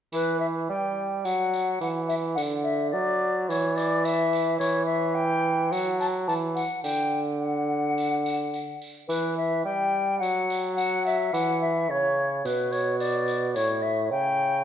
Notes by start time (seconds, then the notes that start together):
0.12 E3 B4, tambourine
0.40 E5
0.69 G3 G5
1.25 F#3 F#5, tambourine
1.54 tambourine
1.81 E3 F#5, tambourine
2.08 E5, tambourine
2.35 D3 F#5, tambourine
2.63 E5
2.91 F#3 D5
3.49 E3 C#5, tambourine
3.76 D5, tambourine
4.05 E5, tambourine
4.33 tambourine
4.58 E3 C#5, tambourine
4.86 E5
5.15 G5
5.72 F#3 F#5, tambourine
6.00 A5, tambourine
6.27 E3 A5, tambourine
6.55 F#5, tambourine
6.83 D3 G5, tambourine
7.40 F#5
7.98 tambourine
8.26 tambourine
8.54 tambourine
8.82 tambourine
9.08 E3 B4, tambourine
9.37 E5
9.65 G3 G5
10.19 F#3 F#5, tambourine
10.50 tambourine
10.75 F#5, tambourine
11.06 E5, tambourine
11.33 E3 F#5, tambourine
11.61 E5
11.89 C#3 C#5
12.45 B2 B4, tambourine
12.72 C#5, tambourine
12.99 D5, tambourine
13.28 tambourine
13.55 A2 C#5, tambourine
13.82 E5
14.11 C#3 G5